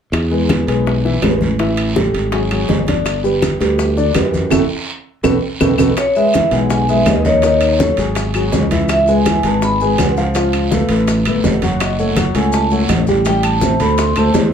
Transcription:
0.12 E2, high bongo, high conga, high timbale, long guiro, claves
0.31 G#3 G#4 B4, high conga
0.49 high bongo, high conga, high timbale, low timbale, short guiro, claves
0.67 B1 G#3 G#4 B4, high bongo, high conga, high timbale, short guiro
0.86 high bongo, high conga, long guiro
1.04 E3 E4 E5, high bongo, high conga
1.22 A1 G#3 G#4 B4, high bongo, low bongo, high conga, high timbale, low timbale, short guiro, claves
1.41 high bongo, high conga, short guiro
1.59 E3 E4 E5, high bongo, high conga, high timbale, long guiro
1.77 high conga, high timbale, claves
1.96 G3 G4 A4, high bongo, high conga, low timbale, short guiro
2.14 G#1, high bongo, high conga, high timbale, short guiro
2.32 F#3 F#4 G#4, high bongo, high conga, high timbale, long guiro
2.51 F#3 F#4 G#4, high bongo, high conga, high timbale, claves
2.69 G1, high bongo, low bongo, high conga, low timbale, short guiro
2.87 D3 D4 D5, high bongo, high conga, high timbale, short guiro
3.06 high bongo, high conga, high timbale, long guiro, claves, maracas
3.24 G3 G4 B4, high conga, maracas
3.42 high bongo, high conga, high timbale, low timbale, short guiro, claves, maracas
3.60 D2 G3 G4 B4, high bongo, high conga, high timbale, short guiro, maracas
3.79 high bongo, high conga, long guiro, maracas
3.97 D3 D4 D5, high bongo, high conga, maracas
4.15 F#2 E3 G4 B4, high bongo, low bongo, high conga, high timbale, low timbale, short guiro, claves, maracas
4.34 high bongo, high conga, short guiro, maracas
4.50 F#1 E4 F#4 A4, low bongo, high conga, high timbale, long guiro, claves, maracas
5.23 B1 F#4 A4 B4, low bongo, high conga, high timbale, long guiro, claves, maracas
5.60 B1 F#4 A4 B4, low bongo, high conga, high timbale, long guiro, claves, maracas
5.78 B1 F#4 A4 B4, low bongo, high conga, high timbale, long guiro, claves, maracas
5.97 C#5, high bongo, high conga, high timbale, long guiro, claves, maracas
6.16 G#3 G#4 B4 E5, high conga, maracas
6.33 E3 E4 E5, high bongo, high conga, high timbale, low timbale, short guiro, claves, maracas
6.51 B1 G#3 G#4 B4 F#5, high bongo, high conga, high timbale, short guiro, maracas
6.70 G#5, high bongo, high conga, long guiro, maracas
6.88 G#3 G#4 B4 E5, high bongo, high conga, maracas
7.05 D#2 D#5, high bongo, low bongo, high conga, high timbale, low timbale, short guiro, claves, maracas
7.25 D#3 D#4 C#5 D#5, high bongo, high conga, short guiro, maracas
7.42 D#3 D#4 D#5, high bongo, high conga, high timbale, long guiro, maracas
7.61 high conga, high timbale, claves, maracas
7.79 F#3 F#4 A4, high bongo, high conga, low timbale, short guiro, maracas
7.97 G#1 F#3 F#4 G#4, high bongo, high conga, high timbale, short guiro, maracas
8.15 high bongo, high conga, high timbale, long guiro, maracas
8.34 F#3 F#4 G#4, high bongo, high conga, high timbale, claves, maracas
8.52 C#2, high bongo, low bongo, high conga, low timbale, short guiro, maracas
8.71 E3 E4 E5, high bongo, high conga, high timbale, short guiro, maracas
8.89 E5, high bongo, high conga, high timbale, long guiro, claves, maracas
9.07 G#3 G#4 B4 G#5, high conga, maracas
9.26 E3 E4 E5, high bongo, high conga, high timbale, low timbale, short guiro, claves, maracas
9.43 G#1 G#3 G#4 B4 A5, high bongo, high conga, high timbale, short guiro, maracas
9.62 B5, high bongo, high conga, long guiro, maracas
9.80 G#3 G#4 B4 G#5, high bongo, high conga, maracas
9.98 C#2 F#5, high bongo, low bongo, high conga, high timbale, low timbale, short guiro, claves, maracas
10.17 F3 F4 F5, high bongo, short guiro, maracas
10.35 F3 F4 F5, high bongo, high conga, high timbale, long guiro, maracas
10.53 high conga, high timbale, claves, maracas
10.71 A3 A4 B4, high bongo, high conga, low timbale, short guiro, maracas
10.89 A1 A3 A4 B4, high bongo, high conga, high timbale, short guiro, maracas
11.08 high bongo, high conga, high timbale, long guiro, maracas
11.25 G1 A3 A4 B4, high bongo, high conga, high timbale, claves, maracas
11.44 F#1, high bongo, low bongo, high conga, low timbale, short guiro, maracas
11.62 F#3 F#4 F#5, high bongo, high conga, high timbale, short guiro, maracas
11.80 D#5, high bongo, high conga, high timbale, long guiro, claves, maracas
11.98 A3 A4 C#5 F#5, high conga, maracas
12.16 F#3 F#4 F#5, high bongo, high conga, high timbale, low timbale, short guiro, claves, maracas
12.35 C#2 A3 A4 C#5 G#5, high bongo, high conga, high timbale, short guiro, maracas
12.52 A5, high bongo, high conga, long guiro, maracas
12.71 A3 A4 C#5 F#5, high bongo, high conga, maracas
12.89 A1, high bongo, low bongo, high conga, high timbale, low timbale, short guiro, claves, maracas
13.07 G3 G4 G5, high bongo, high conga, short guiro, maracas
13.25 G3 G4 G5, high bongo, high conga, high timbale, long guiro, maracas
13.43 A5, high conga, high timbale, claves, maracas
13.61 C4 C5 E5, high bongo, high conga, low timbale, short guiro, maracas
13.80 D2 A3 A4 C5 B5, high bongo, high conga, high timbale, short guiro, maracas
13.98 C6, high bongo, high conga, high timbale, long guiro, maracas
14.16 D2 A3 A4 C5 A5, high bongo, high conga, high timbale, claves, maracas
14.34 E2, high bongo, low bongo, high conga, low timbale, short guiro, maracas

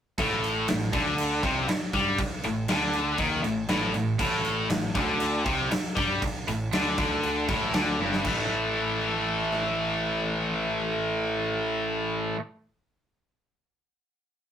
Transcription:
0.18 A1 A2, kick, crash
0.44 crash
0.68 A1 A2, snare, crash
0.93 D2 D3, kick, crash
1.18 crash
1.43 C2 C3, kick, crash
1.68 muted distorted electric guitar stroke, muted picked electric bass stroke, snare, crash
1.93 G2 G3, kick, crash
2.19 muted picked electric bass stroke, muted distorted electric guitar stroke, kick, crash
2.43 A1 A2, crash
2.68 D2 D3, snare, crash
2.93 crash
3.18 D#2 D#3, kick, crash
3.43 A1 A2, crash
3.68 A1 A2, snare, crash
3.94 A1 A2, crash
4.19 A1 A2, kick, crash
4.45 crash
4.70 A1 A2, snare, crash
4.95 D2 D3, kick, crash
5.20 crash
5.45 C2 C3, kick, crash
5.71 muted distorted electric guitar stroke, muted picked electric bass stroke, snare, crash
5.96 G2 G3, kick, crash
6.22 muted distorted electric guitar stroke, muted picked electric bass stroke, kick, crash
6.48 A1 A2, crash
6.73 D2 D3, snare, crash
6.98 D2 D3, kick, crash
7.23 crash
7.48 A1 A2, kick, crash
7.74 D2 D3, snare, crash
7.99 G1 G2, high tom
8.13 snare
8.24 A1 A2 E3 A3, kick, crash
9.52 cross-stick

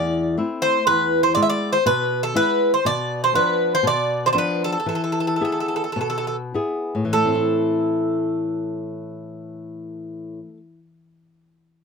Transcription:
Already playing: E2 D5
0.37 A3 C4 E4
0.62 C5
0.87 E2 B4
1.23 C5
1.35 G#3 B3 E4 D5
1.42 E5
1.50 D5
1.73 C5
1.86 B2 B4
2.23 A4
2.34 G#3 B3 E4 B4
2.74 C5
2.85 B2 D5
3.24 C5
3.34 F3 B3 D4 B4
3.75 C5
3.83 B2
3.87 D5
4.26 C5 D5
4.33 F3 B3 D4 C5
4.38 B4
4.64 A4
4.72 A4
4.80 A4
4.86 E3 A4
4.95 A4
5.04 A4
5.12 A4
5.20 A4
5.27 A4
5.36 A4
5.41 B3 E4 G#4 A4
5.52 A4
5.60 A4
5.68 A4
5.76 A4
5.84 A4
5.92 B2 A4
6.01 A4
6.10 A4
6.18 A4
6.27 A4
6.54 B3 E4 G#4
6.95 A2
7.05 E3
7.13 A3 A4
7.26 C4
7.35 E4

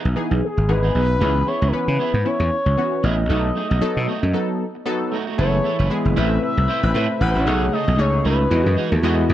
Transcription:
0.05 B1, muted clean electric guitar stroke
0.16 E3 B3 D#4 G#4, muted clean electric guitar stroke
0.31 B1, muted clean electric guitar stroke
0.44 G#4
0.57 G#1, muted clean electric guitar stroke
0.68 G#1 E3 B3 D#4 G#4 B4, muted clean electric guitar stroke
0.83 B3 D#4 G#4
0.95 B1 B3 D#4 G#4 B4
1.09 muted clean electric guitar stroke
1.20 C#2 E3 B3 C#4 E4 G#4
1.35 muted clean electric guitar stroke
1.47 B3 E4 B4 C#5
1.61 C#2 B3 E4 G#4
1.68 A#4
1.73 E3 B3 C#4 B4, muted clean electric guitar stroke, muted slap bass stroke
1.88 C#3, muted clean electric guitar stroke
1.99 B3 E4 G#4
2.14 G#2, muted clean electric guitar stroke
2.25 E3 B3 C#4 E4 C#5, muted clean electric guitar stroke
2.40 E2, muted clean electric guitar stroke
2.66 C#2, muted clean electric guitar stroke
2.77 E3 B3 C#4 F#4
2.92 muted clean electric guitar stroke
3.03 A1 B3 E4 G#4 D#5
3.18 muted clean electric guitar stroke
3.29 B1 F#3 A3 B3 D#4 F#4 A4
3.44 muted clean electric guitar stroke
3.56 A3 D#4 G#4
3.70 B1 A3 D#4 F#4
3.81 F#3 B3 D#4 A4, muted clean electric guitar stroke, muted slap bass stroke
3.96 B2, muted clean electric guitar stroke
4.07 A3 D#4 F#4
4.23 F#2, muted clean electric guitar stroke
4.33 F#3 B3 D#4 A4, muted clean electric guitar stroke
4.49 muted clean electric guitar stroke
4.75 muted clean electric guitar stroke
4.86 F#3 B3 D#4 A4, muted clean electric guitar stroke
5.01 muted clean electric guitar stroke
5.12 A3 D#4 F#4
5.27 A3 D#4 F#4
5.38 F#1 A2 E3 A3 B3 E4 G#4 A4 B4 C#5
5.64 E4 A4 C#5
5.79 F#1 E4 A4 B4
5.90 G#3 B3 E4 G#4, muted clean electric guitar stroke
6.05 F#1, muted clean electric guitar stroke
6.16 A1 C3 A3 C4 E4 B4 E5
6.31 muted clean electric guitar stroke
6.42 E5, muted clean electric guitar stroke
6.57 C2, muted clean electric guitar stroke
6.68 C4 E4 C5
6.83 A1 E3 B3 C4 B4, muted clean electric guitar stroke
6.94 A2 A3 C4 E4 B4
7.09 muted clean electric guitar stroke
7.20 A1 E3 B3 C4 B4 F#5, muted clean electric guitar stroke
7.36 A1 C4 E4 C5
7.46 B1 C#3 A3 D#4 G#4 C#5
7.73 A3 D#4 A4 D#5
7.88 B1 A3 D#4 G#4
7.98 C#2 A3 D#4 G#4 C#5, muted clean electric guitar stroke
8.14 muted clean electric guitar stroke
8.25 C#2 A3 D#4 G#4 B4
8.40 muted clean electric guitar stroke
8.50 E2 E3 G#3 E4 F#4 D#5, muted clean electric guitar stroke
8.66 F#2, muted clean electric guitar stroke
8.77 G#3 D#4 G#4
8.92 D#2, muted clean electric guitar stroke
8.96 A4
9.03 E2 G#3 D#4 E4 F#4 D#5
9.18 muted clean electric guitar stroke
9.30 E2, muted clean electric guitar stroke

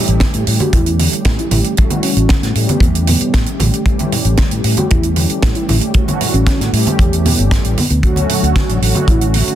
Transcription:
Already playing: E3 G3 A3 C#4 G4
0.07 A1, closed hi-hat
0.20 kick, snare, closed hi-hat, high conga
0.34 A2, closed hi-hat
0.46 A2 E3 G3 A3 C#4 G4, open hi-hat
0.60 F#4, closed hi-hat, high conga
0.73 E2 E4, kick, closed hi-hat, low conga
0.86 closed hi-hat
0.99 open hi-hat, high conga
1.12 muted fingered electric bass stroke, closed hi-hat
1.25 A2, kick, snare, closed hi-hat
1.39 E4, closed hi-hat
1.51 A1 E4, open hi-hat, high conga, low conga
1.64 closed hi-hat
1.77 E3 G3 A3 C#4 F#4, kick, closed hi-hat
1.90 closed hi-hat, high conga
2.03 C#4, open hi-hat
2.16 A1, closed hi-hat
2.29 kick, snare, closed hi-hat, high conga
2.43 A2, snare, closed hi-hat
2.55 A2 E3 G3 A3 C#4 G4, open hi-hat
2.69 B3, closed hi-hat, high conga
2.80 E2, kick, closed hi-hat
2.95 closed hi-hat
3.07 B3, open hi-hat, high conga, low conga
3.21 muted fingered electric bass stroke, closed hi-hat
3.34 A2, kick, snare, closed hi-hat
3.46 closed hi-hat
3.59 A1, open hi-hat, high conga, low conga
3.73 closed hi-hat
3.85 E3 G3 A3 C#4 G4, kick, closed hi-hat
3.99 closed hi-hat, high conga
4.12 open hi-hat, low conga
4.25 A1, closed hi-hat
4.37 kick, snare, closed hi-hat, high conga
4.51 A2, closed hi-hat
4.63 A2 E3 G3 A3 C#4 G4, open hi-hat
4.77 F#4, closed hi-hat, high conga
4.90 E2 E4, kick, closed hi-hat, low conga
5.03 closed hi-hat
5.16 open hi-hat, high conga
5.30 muted fingered electric bass stroke, closed hi-hat
5.43 A2, kick, snare, closed hi-hat
5.55 E4, closed hi-hat
5.68 A1 E4, open hi-hat, high conga, low conga
5.81 closed hi-hat
5.94 E3 G3 A3 C#4 F#4, kick, closed hi-hat
6.08 closed hi-hat, high conga
6.21 open hi-hat, low conga
6.34 A1 C#4, closed hi-hat
6.46 C#4, kick, snare, closed hi-hat, high conga
6.60 A2, snare, closed hi-hat
6.72 A2 E3 G3 A3 C#4 G4, open hi-hat
6.87 closed hi-hat, high conga
6.99 E2, kick, closed hi-hat
7.13 closed hi-hat
7.25 B3, open hi-hat, high conga, low conga
7.38 G1, closed hi-hat
7.51 kick, snare, closed hi-hat
7.64 A1, closed hi-hat
7.77 B3, open hi-hat, high conga, low conga
7.90 D2 B3, closed hi-hat
8.02 D3 F#3 A3 C#4 F#4, kick, closed hi-hat
8.16 closed hi-hat, high conga
8.29 open hi-hat, low conga
8.43 D2, closed hi-hat
8.56 kick, snare, closed hi-hat, high conga
8.69 A1, closed hi-hat
8.81 A1 D3 F#3 A3 C#4 F#4, open hi-hat
8.95 F#4, closed hi-hat, high conga
9.08 A1 E4, kick, closed hi-hat, low conga
9.21 closed hi-hat
9.34 open hi-hat, high conga
9.48 closed hi-hat

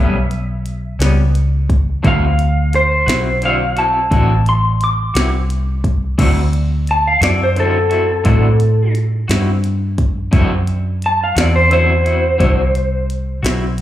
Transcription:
Already playing: B1 A2 G3 B3 C#4 E5
0.31 closed hi-hat
0.66 closed hi-hat
0.99 C#2 G3 B3 C#4, snare, closed hi-hat
1.35 closed hi-hat
1.70 kick, closed hi-hat
2.03 D2 D3 C4 E4 F#4, kick, closed hi-hat
2.07 F5
2.39 closed hi-hat
2.73 C5, closed hi-hat
3.06 B1 C4 E4 F#4, snare, closed hi-hat
3.42 D3 C4 E4 F#4 F5, closed hi-hat
3.76 C4 E4 F#4 A5, closed hi-hat
4.11 A1 D3 C4 E4 F#4, kick, closed hi-hat
4.46 C6, closed hi-hat
4.81 D6, closed hi-hat
5.14 C2 C4 E4 F#4, snare, closed hi-hat
5.50 closed hi-hat
5.84 kick, closed hi-hat
6.18 D2 D3 C4 E4 F#4, kick, closed hi-hat, crash
6.53 closed hi-hat
6.87 A5, closed hi-hat
7.07 F5
7.21 F#2 C4 E4 F#4 D5, snare, closed hi-hat
7.43 C5
7.56 D3 C4 E4 F#4, closed hi-hat
7.60 A4
7.90 C4 E4 F#4, closed hi-hat
8.24 A2 D3 C4 E4 F#4, kick, closed hi-hat
8.60 closed hi-hat
8.95 closed hi-hat
9.28 G2 C4 E4 F#4, snare, closed hi-hat
9.64 closed hi-hat
9.98 kick, closed hi-hat
10.31 F#2 D3 C4 E4 F#4, kick, closed hi-hat
10.67 closed hi-hat
11.02 A5, closed hi-hat
11.24 F5
11.35 E2 C4 E4 F#4, snare, closed hi-hat
11.40 D5
11.56 C5
11.70 D3 C4 E4 F#4 C5, closed hi-hat
12.04 C4 E4 F#4, closed hi-hat
12.38 C2 D3 C4 E4 F#4, kick, closed hi-hat
12.75 closed hi-hat
13.10 closed hi-hat
13.43 B1 C4 E4 F#4, snare, closed hi-hat
13.78 closed hi-hat

